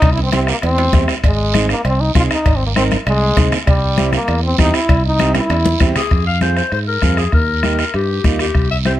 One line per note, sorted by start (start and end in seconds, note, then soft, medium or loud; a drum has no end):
0.00 0.51 C2 loud
0.00 0.11 D#4 loud
0.00 bombo low medium
0.00 bombo rim medium
0.00 cowbell medium
0.00 high timbale medium
0.00 long guiro medium
0.12 0.22 E4 medium
0.18 high timbale medium
0.23 0.32 C4 medium
0.32 0.54 C4 medium
0.32 0.40 C4 medium
0.32 0.54 E4 medium
0.32 0.54 G4 medium
0.32 bombo rim medium
0.32 high conga medium
0.32 low timbale medium
0.32 short guiro medium
0.47 0.55 A#3 medium
0.47 bombo rim medium
0.47 short guiro medium
0.62 0.87 E2 medium
0.62 1.06 C4 loud
0.62 bombo rim medium
0.62 cowbell medium
0.62 low timbale medium
0.62 long guiro medium
0.78 low timbale loud
0.93 1.06 E2 medium
0.93 1.15 C4 medium
0.93 1.15 E4 medium
0.93 1.15 G4 medium
0.93 bombo low medium
0.93 bombo rim medium
0.93 high conga medium
0.93 low conga medium
0.93 low timbale medium
0.93 short guiro medium
1.08 bombo rim medium
1.08 low timbale medium
1.08 short guiro medium
1.23 1.72 G#1 loud
1.23 1.67 G#3 medium
1.23 bombo low medium
1.23 bombo rim medium
1.23 cowbell medium
1.23 long guiro medium
1.54 1.75 C4 medium
1.54 1.76 D#4 medium
1.54 1.76 G#4 medium
1.54 bombo rim medium
1.54 high conga medium
1.54 short guiro medium
1.69 1.84 A#3 medium
1.69 bombo rim medium
1.69 short guiro medium
1.85 2.09 C2 loud
1.85 2.02 C4 medium
1.85 bombo rim medium
1.85 cowbell medium
1.85 long guiro medium
2.00 2.15 D#4 medium
2.15 2.27 C2 medium
2.15 2.36 C4 medium
2.15 2.36 D#4 medium
2.15 2.22 F4 medium
2.15 2.37 G#4 medium
2.15 bombo low medium
2.15 bombo rim medium
2.15 high conga medium
2.15 short guiro medium
2.31 2.58 D#4 medium
2.31 bombo rim medium
2.31 short guiro medium
2.46 2.94 G#1 loud
2.46 bombo low medium
2.46 bombo rim medium
2.46 cowbell medium
2.46 long guiro medium
2.56 2.66 C4 medium
2.66 2.71 A#3 medium
2.75 2.97 C4 medium
2.75 2.83 C4 loud
2.75 2.97 D#4 medium
2.75 2.98 A#4 medium
2.75 bombo rim medium
2.75 high conga medium
2.75 short guiro medium
2.91 bombo rim medium
2.91 high conga medium
2.91 short guiro medium
3.07 3.31 C2 loud
3.07 3.49 G#3 loud
3.07 bombo rim medium
3.07 cowbell medium
3.07 long guiro medium
3.37 3.49 C2 medium
3.37 3.58 C4 medium
3.37 3.58 D#4 medium
3.37 3.58 G#4 medium
3.37 bombo low medium
3.37 bombo rim medium
3.37 high conga medium
3.37 low conga medium
3.37 short guiro medium
3.52 bombo rim medium
3.52 low conga medium
3.52 short guiro medium
3.67 4.16 C2 loud
3.67 4.10 G3 loud
3.67 bombo low medium
3.67 bombo rim medium
3.67 cowbell medium
3.67 long guiro medium
3.97 4.19 C4 medium
3.97 4.19 E4 medium
3.97 4.19 G4 medium
3.97 bombo rim medium
3.97 high conga medium
3.97 short guiro medium
4.13 4.41 A#3 medium
4.13 bombo rim medium
4.13 high conga medium
4.13 short guiro medium
4.28 4.53 E2 loud
4.28 bombo rim medium
4.28 cowbell medium
4.28 long guiro medium
4.44 4.58 C4 medium
4.58 4.71 E2 medium
4.58 4.80 C4 medium
4.58 4.76 D#4 loud
4.58 4.80 E4 medium
4.58 4.80 G4 medium
4.58 bombo low medium
4.58 bombo rim medium
4.58 high conga medium
4.58 low timbale medium
4.58 short guiro medium
4.74 5.04 E4 medium
4.74 bombo rim medium
4.74 short guiro medium
4.89 5.38 C2 loud
4.89 bombo low medium
4.89 bombo rim medium
4.89 cowbell medium
4.89 long guiro medium
5.05 5.33 D#4 loud
5.19 5.41 C4 medium
5.19 5.41 E4 medium
5.19 5.41 G4 medium
5.19 bombo rim medium
5.19 high conga medium
5.19 short guiro medium
5.35 5.92 E4 medium
5.35 bombo rim medium
5.35 high conga medium
5.35 high timbale medium
5.35 short guiro medium
5.50 5.74 E2 loud
5.50 bombo rim medium
5.50 cowbell medium
5.50 high timbale medium
5.50 long guiro medium
5.65 high conga medium
5.65 low timbale medium
5.80 5.93 E2 medium
5.80 6.02 C4 medium
5.80 6.02 E4 medium
5.80 6.02 G4 medium
5.80 bombo low medium
5.80 bombo rim medium
5.80 high conga medium
5.80 low timbale medium
5.80 short guiro medium
5.96 6.25 G#4 loud
5.96 bombo rim medium
5.96 low conga medium
5.96 low timbale medium
5.96 short guiro medium
6.11 6.60 F2 medium
6.11 bombo low medium
6.11 bombo rim medium
6.11 long guiro medium
6.27 6.41 F5 medium
6.41 6.63 C4 medium
6.41 6.63 F4 medium
6.41 6.63 G#4 medium
6.41 6.56 C5 medium
6.41 bombo rim medium
6.41 high conga medium
6.41 short guiro medium
6.57 6.71 C5 medium
6.57 bombo rim medium
6.57 short guiro medium
6.72 6.96 G#2 medium
6.72 6.79 C5 medium
6.72 bombo rim medium
6.72 long guiro medium
6.88 7.20 A#4 medium
7.02 7.27 F2 medium
7.02 7.24 C4 medium
7.02 7.24 F4 medium
7.02 7.24 G#4 medium
7.02 bombo low medium
7.02 bombo rim medium
7.02 high conga medium
7.02 short guiro medium
7.17 7.33 G#4 medium
7.17 bombo rim medium
7.17 short guiro medium
7.32 7.82 D#2 medium
7.32 7.76 A#4 medium
7.32 bombo low medium
7.32 bombo rim medium
7.32 long guiro medium
7.63 7.85 A#3 medium
7.63 7.85 D#4 medium
7.63 7.85 G4 medium
7.63 bombo rim medium
7.63 high conga medium
7.63 short guiro medium
7.79 7.93 A#4 medium
7.79 bombo rim medium
7.79 short guiro medium
7.94 8.19 G2 medium
7.94 8.37 G4 medium
7.94 bombo rim medium
8.24 8.49 D#2 medium
8.24 8.46 A#3 medium
8.24 8.46 D#4 medium
8.24 8.46 F4 medium
8.24 bombo low medium
8.24 bombo rim medium
8.24 high conga medium
8.24 short guiro medium
8.39 8.69 G4 medium
8.39 bombo rim medium
8.39 short guiro medium
8.55 9.00 C2 medium
8.55 bombo low medium
8.55 bombo rim medium
8.55 long guiro medium
8.71 8.78 E5 medium
8.85 9.00 C4 medium
8.85 9.00 E4 medium
8.85 9.00 G4 medium
8.85 8.93 C5 medium
8.85 bombo rim medium
8.85 high conga medium
8.85 short guiro medium